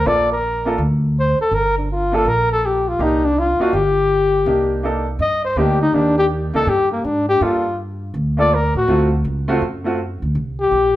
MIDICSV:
0, 0, Header, 1, 5, 480
1, 0, Start_track
1, 0, Key_signature, -2, "minor"
1, 0, Tempo, 367422
1, 76, Time_signature, 4, 2, 24, 8
1, 14318, End_track
2, 0, Start_track
2, 0, Title_t, "Flugelhorn"
2, 0, Program_c, 0, 56
2, 92, Note_on_c, 0, 74, 79
2, 393, Note_off_c, 0, 74, 0
2, 418, Note_on_c, 0, 70, 81
2, 1008, Note_off_c, 0, 70, 0
2, 1561, Note_on_c, 0, 72, 80
2, 1826, Note_off_c, 0, 72, 0
2, 1843, Note_on_c, 0, 69, 81
2, 2016, Note_on_c, 0, 70, 89
2, 2035, Note_off_c, 0, 69, 0
2, 2313, Note_off_c, 0, 70, 0
2, 2323, Note_on_c, 0, 62, 45
2, 2503, Note_on_c, 0, 65, 70
2, 2522, Note_off_c, 0, 62, 0
2, 2808, Note_on_c, 0, 69, 76
2, 2827, Note_off_c, 0, 65, 0
2, 2972, Note_on_c, 0, 70, 84
2, 2992, Note_off_c, 0, 69, 0
2, 3271, Note_off_c, 0, 70, 0
2, 3288, Note_on_c, 0, 69, 84
2, 3473, Note_on_c, 0, 67, 68
2, 3493, Note_off_c, 0, 69, 0
2, 3766, Note_on_c, 0, 65, 71
2, 3785, Note_off_c, 0, 67, 0
2, 3953, Note_on_c, 0, 63, 71
2, 3972, Note_off_c, 0, 65, 0
2, 4240, Note_on_c, 0, 62, 74
2, 4260, Note_off_c, 0, 63, 0
2, 4426, Note_on_c, 0, 65, 77
2, 4445, Note_off_c, 0, 62, 0
2, 4721, Note_on_c, 0, 66, 75
2, 4741, Note_off_c, 0, 65, 0
2, 4883, Note_on_c, 0, 67, 83
2, 4902, Note_off_c, 0, 66, 0
2, 6317, Note_off_c, 0, 67, 0
2, 6807, Note_on_c, 0, 75, 92
2, 7088, Note_off_c, 0, 75, 0
2, 7115, Note_on_c, 0, 72, 81
2, 7289, Note_on_c, 0, 67, 81
2, 7309, Note_off_c, 0, 72, 0
2, 7587, Note_off_c, 0, 67, 0
2, 7594, Note_on_c, 0, 63, 83
2, 7763, Note_on_c, 0, 62, 72
2, 7783, Note_off_c, 0, 63, 0
2, 8067, Note_off_c, 0, 62, 0
2, 8078, Note_on_c, 0, 67, 83
2, 8176, Note_off_c, 0, 67, 0
2, 8558, Note_on_c, 0, 69, 90
2, 8736, Note_on_c, 0, 67, 81
2, 8756, Note_off_c, 0, 69, 0
2, 9030, Note_off_c, 0, 67, 0
2, 9038, Note_on_c, 0, 58, 61
2, 9205, Note_on_c, 0, 62, 73
2, 9225, Note_off_c, 0, 58, 0
2, 9508, Note_off_c, 0, 62, 0
2, 9518, Note_on_c, 0, 67, 102
2, 9701, Note_on_c, 0, 65, 85
2, 9721, Note_off_c, 0, 67, 0
2, 10168, Note_off_c, 0, 65, 0
2, 10970, Note_on_c, 0, 74, 84
2, 11164, Note_on_c, 0, 70, 82
2, 11183, Note_off_c, 0, 74, 0
2, 11448, Note_off_c, 0, 70, 0
2, 11458, Note_on_c, 0, 66, 82
2, 11889, Note_off_c, 0, 66, 0
2, 13853, Note_on_c, 0, 67, 83
2, 14318, Note_off_c, 0, 67, 0
2, 14318, End_track
3, 0, Start_track
3, 0, Title_t, "Upright piano"
3, 0, Program_c, 1, 0
3, 67, Note_on_c, 1, 58, 55
3, 75, Note_on_c, 1, 62, 47
3, 82, Note_on_c, 1, 65, 47
3, 95, Note_on_c, 1, 69, 59
3, 349, Note_off_c, 1, 58, 0
3, 353, Note_off_c, 1, 62, 0
3, 357, Note_off_c, 1, 65, 0
3, 363, Note_off_c, 1, 69, 0
3, 851, Note_on_c, 1, 58, 57
3, 858, Note_on_c, 1, 62, 51
3, 863, Note_on_c, 1, 65, 52
3, 876, Note_on_c, 1, 69, 69
3, 1011, Note_off_c, 1, 58, 0
3, 1015, Note_off_c, 1, 62, 0
3, 1018, Note_off_c, 1, 65, 0
3, 1024, Note_off_c, 1, 69, 0
3, 2767, Note_on_c, 1, 58, 62
3, 2778, Note_on_c, 1, 62, 61
3, 2786, Note_on_c, 1, 65, 58
3, 2796, Note_on_c, 1, 69, 65
3, 2929, Note_off_c, 1, 58, 0
3, 2934, Note_off_c, 1, 62, 0
3, 2938, Note_off_c, 1, 65, 0
3, 2943, Note_off_c, 1, 69, 0
3, 3905, Note_on_c, 1, 58, 58
3, 3911, Note_on_c, 1, 62, 53
3, 3919, Note_on_c, 1, 63, 52
3, 3925, Note_on_c, 1, 67, 62
3, 4187, Note_off_c, 1, 58, 0
3, 4189, Note_off_c, 1, 62, 0
3, 4193, Note_off_c, 1, 63, 0
3, 4197, Note_off_c, 1, 67, 0
3, 4693, Note_on_c, 1, 58, 59
3, 4709, Note_on_c, 1, 62, 54
3, 4710, Note_on_c, 1, 63, 60
3, 4722, Note_on_c, 1, 65, 71
3, 4851, Note_off_c, 1, 58, 0
3, 4859, Note_off_c, 1, 62, 0
3, 4860, Note_off_c, 1, 63, 0
3, 4866, Note_off_c, 1, 65, 0
3, 5827, Note_on_c, 1, 58, 56
3, 5834, Note_on_c, 1, 62, 50
3, 5844, Note_on_c, 1, 63, 46
3, 5855, Note_on_c, 1, 67, 57
3, 6292, Note_off_c, 1, 58, 0
3, 6296, Note_off_c, 1, 62, 0
3, 6301, Note_off_c, 1, 63, 0
3, 6306, Note_off_c, 1, 67, 0
3, 6312, Note_on_c, 1, 58, 59
3, 6321, Note_on_c, 1, 62, 49
3, 6330, Note_on_c, 1, 63, 50
3, 6337, Note_on_c, 1, 69, 63
3, 6590, Note_off_c, 1, 58, 0
3, 6594, Note_off_c, 1, 62, 0
3, 6599, Note_off_c, 1, 63, 0
3, 6603, Note_off_c, 1, 69, 0
3, 7272, Note_on_c, 1, 58, 64
3, 7280, Note_on_c, 1, 62, 58
3, 7294, Note_on_c, 1, 63, 59
3, 7297, Note_on_c, 1, 67, 69
3, 7550, Note_off_c, 1, 58, 0
3, 7554, Note_off_c, 1, 62, 0
3, 7561, Note_off_c, 1, 63, 0
3, 7563, Note_off_c, 1, 67, 0
3, 7754, Note_on_c, 1, 58, 53
3, 7760, Note_on_c, 1, 62, 49
3, 7774, Note_on_c, 1, 63, 52
3, 7779, Note_on_c, 1, 67, 61
3, 8481, Note_off_c, 1, 58, 0
3, 8484, Note_off_c, 1, 62, 0
3, 8491, Note_off_c, 1, 63, 0
3, 8493, Note_off_c, 1, 67, 0
3, 8539, Note_on_c, 1, 58, 62
3, 8551, Note_on_c, 1, 62, 57
3, 8562, Note_on_c, 1, 63, 58
3, 8568, Note_on_c, 1, 69, 68
3, 8695, Note_off_c, 1, 58, 0
3, 8700, Note_off_c, 1, 62, 0
3, 8706, Note_off_c, 1, 63, 0
3, 8709, Note_off_c, 1, 69, 0
3, 9673, Note_on_c, 1, 58, 51
3, 9687, Note_on_c, 1, 62, 51
3, 9693, Note_on_c, 1, 65, 46
3, 9699, Note_on_c, 1, 69, 57
3, 9952, Note_off_c, 1, 58, 0
3, 9959, Note_off_c, 1, 62, 0
3, 9961, Note_off_c, 1, 65, 0
3, 9964, Note_off_c, 1, 69, 0
3, 10935, Note_on_c, 1, 58, 52
3, 10948, Note_on_c, 1, 62, 47
3, 10955, Note_on_c, 1, 65, 52
3, 10961, Note_on_c, 1, 69, 63
3, 11093, Note_off_c, 1, 58, 0
3, 11100, Note_off_c, 1, 62, 0
3, 11103, Note_off_c, 1, 65, 0
3, 11106, Note_off_c, 1, 69, 0
3, 11598, Note_on_c, 1, 57, 53
3, 11600, Note_on_c, 1, 60, 54
3, 11615, Note_on_c, 1, 65, 53
3, 11623, Note_on_c, 1, 66, 65
3, 11875, Note_off_c, 1, 57, 0
3, 11876, Note_off_c, 1, 60, 0
3, 11883, Note_off_c, 1, 65, 0
3, 11887, Note_off_c, 1, 66, 0
3, 12384, Note_on_c, 1, 57, 73
3, 12388, Note_on_c, 1, 60, 67
3, 12395, Note_on_c, 1, 65, 69
3, 12402, Note_on_c, 1, 66, 80
3, 12539, Note_off_c, 1, 57, 0
3, 12541, Note_off_c, 1, 60, 0
3, 12544, Note_off_c, 1, 65, 0
3, 12547, Note_off_c, 1, 66, 0
3, 12858, Note_on_c, 1, 57, 54
3, 12871, Note_on_c, 1, 60, 52
3, 12878, Note_on_c, 1, 65, 55
3, 12887, Note_on_c, 1, 66, 67
3, 13016, Note_off_c, 1, 57, 0
3, 13022, Note_off_c, 1, 60, 0
3, 13026, Note_off_c, 1, 65, 0
3, 13030, Note_off_c, 1, 66, 0
3, 14318, End_track
4, 0, Start_track
4, 0, Title_t, "Upright bass"
4, 0, Program_c, 2, 32
4, 68, Note_on_c, 2, 34, 72
4, 983, Note_off_c, 2, 34, 0
4, 1019, Note_on_c, 2, 38, 79
4, 1763, Note_off_c, 2, 38, 0
4, 1978, Note_on_c, 2, 31, 77
4, 2897, Note_off_c, 2, 31, 0
4, 2940, Note_on_c, 2, 34, 74
4, 3858, Note_off_c, 2, 34, 0
4, 3908, Note_on_c, 2, 36, 72
4, 4647, Note_off_c, 2, 36, 0
4, 4871, Note_on_c, 2, 31, 78
4, 5784, Note_off_c, 2, 31, 0
4, 5825, Note_on_c, 2, 36, 76
4, 6741, Note_off_c, 2, 36, 0
4, 6779, Note_on_c, 2, 43, 78
4, 7232, Note_off_c, 2, 43, 0
4, 7257, Note_on_c, 2, 38, 72
4, 7711, Note_off_c, 2, 38, 0
4, 7740, Note_on_c, 2, 39, 72
4, 8483, Note_off_c, 2, 39, 0
4, 8540, Note_on_c, 2, 37, 64
4, 8700, Note_off_c, 2, 37, 0
4, 8708, Note_on_c, 2, 43, 79
4, 9157, Note_off_c, 2, 43, 0
4, 9201, Note_on_c, 2, 44, 74
4, 9644, Note_off_c, 2, 44, 0
4, 9677, Note_on_c, 2, 43, 78
4, 10588, Note_off_c, 2, 43, 0
4, 10632, Note_on_c, 2, 38, 80
4, 11371, Note_off_c, 2, 38, 0
4, 11429, Note_on_c, 2, 45, 64
4, 11586, Note_off_c, 2, 45, 0
4, 11597, Note_on_c, 2, 38, 78
4, 12043, Note_off_c, 2, 38, 0
4, 12078, Note_on_c, 2, 37, 77
4, 12524, Note_off_c, 2, 37, 0
4, 12560, Note_on_c, 2, 42, 75
4, 13295, Note_off_c, 2, 42, 0
4, 13353, Note_on_c, 2, 38, 64
4, 13509, Note_off_c, 2, 38, 0
4, 13520, Note_on_c, 2, 36, 78
4, 13965, Note_off_c, 2, 36, 0
4, 13995, Note_on_c, 2, 34, 75
4, 14318, Note_off_c, 2, 34, 0
4, 14318, End_track
5, 0, Start_track
5, 0, Title_t, "Muted upright bass strokes"
5, 1814, Note_on_c, 9, 29, 37
5, 1944, Note_off_c, 9, 29, 0
5, 4695, Note_on_c, 9, 29, 34
5, 4825, Note_off_c, 9, 29, 0
5, 14318, End_track
0, 0, End_of_file